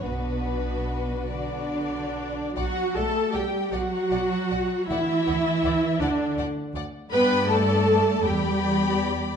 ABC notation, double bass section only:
X:1
M:6/8
L:1/16
Q:3/8=52
K:Bm
V:1 name="Double bass section" clef=bass
B,,,8- B,,,3 z | B,,,2 B,,,2 B,,,2 B,,,2 B,,,2 B,,,2 | D,,2 D,,2 D,,2 D,,2 D,,2 D,,2 | G,,6 E,,6 |]